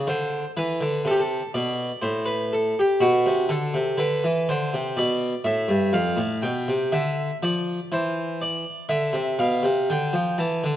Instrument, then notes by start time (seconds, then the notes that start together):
harpsichord
0.07 D3 C5
0.57 E3 B4
0.81 D3
1.05 C3 A4
1.11 G4
1.20 A4
1.54 B2 D5
2.02 A2 C5
2.26 B4
2.53 A4
2.79 G4
3.00 B2 F#4
3.26 C3
3.49 D3 A4
3.74 C3
3.98 D3 B4
4.24 E3
4.49 D3 C5
4.74 C3
4.97 B2 D5
5.44 A2 E5
5.68 G2
5.93 F2 F5
6.17 A2
6.42 B2 G5
6.68 C3
6.92 D3 E5
7.43 F3 D5
7.92 E3 C5
8.42 D5
8.89 D3 E5
9.13 C3
9.39 B2 F5
9.63 C3
9.90 D3 G5
10.13 F3
10.38 E3 A5
10.64 D3